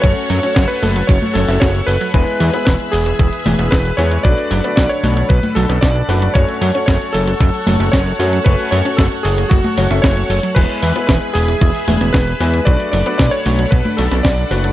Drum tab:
CC |----------------|----------------|----------------|----------------|
HH |xxoxxxoxxxoxxxox|xxoxxxoxxxoxxxox|xxoxxxoxxxoxxxox|xxoxxxoxxxoxxxox|
SD |----o------oo---|----o-------o---|----o------oo---|----o-------o---|
CG |------o--o------|----------o-----|------o--o------|----------o-----|
BD |o---o---o---o---|o---o---o---o---|o---o---o---o---|o---o---o---o---|

CC |----------------|x---------------|----------------|
HH |xxoxxxoxxxoxxxox|xxoxxxoxxxoxxxox|xxoxxxoxxxoxxxox|
SD |----o------oo---|----o-------o---|----o------oo---|
CG |---------o------|----------o-----|------o--o------|
BD |o---o---o---o---|o---o---o---o---|o---o---o---o---|